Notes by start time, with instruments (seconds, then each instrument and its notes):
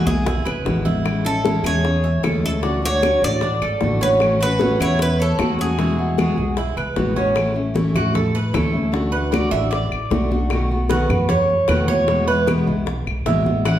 Already playing: cuban tres G#4
0.06 upright bass B1, steel-string acoustic guitar G#3 B3 E4, cuban tres G#4, high bongo, high conga
0.26 cuban tres E4, muted steel-string acoustic guitar stroke, high bongo, low conga
0.45 upright bass B1, cuban tres B4, low conga, claves
0.65 upright bass A1, steel-string acoustic guitar B2 E3 G#3 B3 E4, high bongo, low bongo, low conga
0.85 steel-string acoustic guitar G#3 B3 E4, cuban tres E4, high bongo, low conga
1.04 steel-string acoustic guitar E3 G#3 C#4 E4, high bongo, high conga, claves
1.25 steel-string acoustic guitar G#3 C#4 E4, cuban tres A4, high conga
1.44 steel-string acoustic guitar E3 G#3 C#4 E4, high bongo, high conga
1.63 upright bass E2, steel-string acoustic guitar G#3 C#4 E4, cuban tres G#4 C#5, high conga, claves
1.84 muted steel-string acoustic guitar stroke, high bongo, high conga
2.04 cuban tres E5, high conga
2.23 upright bass D2, steel-string acoustic guitar E3 G#3 C#4 E4, cuban tres A4, high bongo, low bongo, high conga, claves
2.43 steel-string acoustic guitar G#3 C#4 E4, cuban tres A4
2.63 steel-string acoustic guitar D3 A3 D4 F#4, cuban tres D4, high bongo, high conga
2.82 steel-string acoustic guitar A3 D4 F#4, cuban tres C#5, high bongo, high conga
3.02 steel-string acoustic guitar D3 A3 D4 F#4, cuban tres F#4, high bongo, high conga, claves
3.22 upright bass A1, steel-string acoustic guitar A3 D4 F#4, cuban tres D5, high bongo
3.41 cuban tres D4, muted steel-string acoustic guitar stroke, high bongo, high conga
3.62 upright bass G#1, cuban tres A4, high conga, claves
3.81 upright bass A1, steel-string acoustic guitar D3 A3 D4 F#4, high bongo, low bongo, high conga
4.01 steel-string acoustic guitar A3 D4 F#4, cuban tres C#4 B4, high bongo, high conga
4.20 steel-string acoustic guitar E3 A3 C#4 F#4, high bongo, high conga, claves
4.40 steel-string acoustic guitar A3 C#4 F#4, cuban tres F#4 B4, high conga
4.59 steel-string acoustic guitar E3 A3 C#4 F#4, high bongo, high conga
4.79 upright bass E2, steel-string acoustic guitar A3 C#4 F#4, cuban tres E4 C#5, high conga, claves
4.99 cuban tres B4, muted steel-string acoustic guitar stroke, high bongo, high conga
5.20 cuban tres A4 C#5, high conga
5.39 upright bass E2, steel-string acoustic guitar E3 A3 C#4 F#4, cuban tres F#4, high bongo, low bongo, high conga, claves
5.58 steel-string acoustic guitar A3 C#4 F#4, cuban tres G#4, high conga
5.78 steel-string acoustic guitar B2 E3 G#3 B3 F#4, cuban tres E4, high bongo, high conga
5.98 steel-string acoustic guitar G#3 B3 F#4, high bongo, high conga
6.18 steel-string acoustic guitar B2 E3 G#3 B3 F#4, cuban tres G#4, high bongo, high conga, claves
6.37 upright bass B1, steel-string acoustic guitar G#3 B3 F#4, high bongo
6.57 cuban tres E4, muted steel-string acoustic guitar stroke, high bongo, high conga
6.77 upright bass B1, cuban tres B4, high conga, claves
6.96 upright bass A1, steel-string acoustic guitar B2 E3 G#3 B3 F#4, high bongo, low bongo, high conga
7.15 steel-string acoustic guitar G#3 B3 F#4, cuban tres C#4, high bongo, high conga
7.35 steel-string acoustic guitar E3 A3 C#4 E4, high bongo, high conga, claves
7.54 steel-string acoustic guitar A3 C#4 E4, high conga
7.74 steel-string acoustic guitar E3 A3 C#4 E4, high bongo, high conga
7.94 upright bass A2, steel-string acoustic guitar A3 C#4 E4, cuban tres F#4, high conga, low conga, claves
8.13 cuban tres A4, muted steel-string acoustic guitar stroke, high bongo, high conga, low conga
8.35 cuban tres B4, high conga
8.53 upright bass D2, steel-string acoustic guitar E3 A3 C#4 E4, cuban tres A4, high bongo, low bongo, high conga, claves
8.72 steel-string acoustic guitar A3 C#4 E4
8.92 steel-string acoustic guitar D3 A3 D4 F#4, high bongo, high conga
9.12 steel-string acoustic guitar A3 D4 F#4, cuban tres B4, high bongo, high conga
9.31 steel-string acoustic guitar D3 A3 D4 F#4, cuban tres D5, high bongo, high conga, claves
9.51 upright bass A1, steel-string acoustic guitar A3 D4 F#4, cuban tres E5, high bongo
9.71 cuban tres D5, muted steel-string acoustic guitar stroke, high bongo, high conga
9.91 upright bass A1, high conga, claves
10.10 upright bass B1, steel-string acoustic guitar D3 A3 D4 F#4, high bongo, low bongo, high conga
10.31 steel-string acoustic guitar A3 D4 F#4, high bongo, high conga
10.50 steel-string acoustic guitar B2 D#3 A3 B3 F#4, high bongo, high conga, claves
10.71 steel-string acoustic guitar A3 B3 F#4, high conga
10.89 steel-string acoustic guitar B2 D#3 A3 B3 F#4, cuban tres B4, high bongo, high conga
11.09 upright bass F#2, steel-string acoustic guitar A3 B3 F#4, high conga, low conga, claves
11.29 cuban tres C#5, muted steel-string acoustic guitar stroke, high bongo, high conga, low conga
11.49 high conga
11.68 upright bass E2, steel-string acoustic guitar B2 D#3 A3 B3 F#4, cuban tres B4, high bongo, low bongo, high conga, claves
11.88 steel-string acoustic guitar A3 B3 F#4, cuban tres C#5, high conga
12.07 steel-string acoustic guitar B2 E3 G#3 B3 E4, high bongo, high conga
12.27 steel-string acoustic guitar G#3 B3 E4, cuban tres B4, high bongo, high conga
12.47 steel-string acoustic guitar B2 E3 G#3 B3 E4, high bongo, high conga, claves
12.66 upright bass B1, steel-string acoustic guitar G#3 B3 E4, high bongo
12.86 muted steel-string acoustic guitar stroke, high bongo, high conga
13.07 upright bass B1, high conga, claves
13.26 upright bass A1, steel-string acoustic guitar B2 E3 G#3 B3 E4, cuban tres E5, high bongo, low bongo, high conga
13.45 steel-string acoustic guitar G#3 B3 E4, high bongo, high conga
13.65 steel-string acoustic guitar E3 G#3 C#4 E4, cuban tres F#5, high bongo, high conga, claves